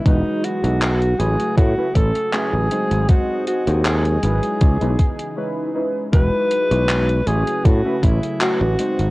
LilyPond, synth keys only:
\new Staff \with { instrumentName = "Synth keys" } { \time 4/4 \key a \lydian \tempo 4 = 79 <e gis dis' fis' b'>8. <gis dis' e' fis' b'>8. <a cis' e' fis' b'>8. <a cis' e' fis' b'>16 r8 <a cis' e' fis' b'>8 <gis bis dis' fis' bis'>8 | <gis bis dis' fis' bis'>8. <gis bis dis' fis' bis'>8. <gis cis' dis' e' b'>8. <gis cis' dis' e' b'>16 r8 <gis cis' dis' e' b'>8 <gis cis' dis' e' b'>8 | <gis dis' e' fis' b'>8. <gis dis' e' fis' b'>8. <a cis' e' fis' b'>8. <a cis' e' fis' b'>16 r8 <a cis' e' fis' b'>8 <gis bis dis' fis' bis'>8 | }